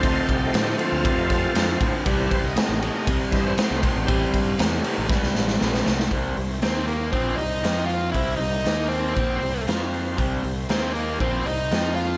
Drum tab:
RD |x-x-x-x-x-x-x-x-|x-x-x-x-x-x-x-x-|x-x-x-x---------|----------------|
HH |----------------|----------------|----------------|o-o-o-o-o-o-o-o-|
SD |----o-----o-o---|----o-----o-o---|----o---oooooooo|----o-------o---|
BD |o-o-----o-o---o-|o-o-----o-o---o-|o-o-----o-------|o-------o-------|

RD |----------------|----------------|
HH |o-o-o-o-o-o-o-o-|o-o-o-o-o-o-o-o-|
SD |----o-------o---|----o-------o---|
BD |o-------o-------|o-------o-------|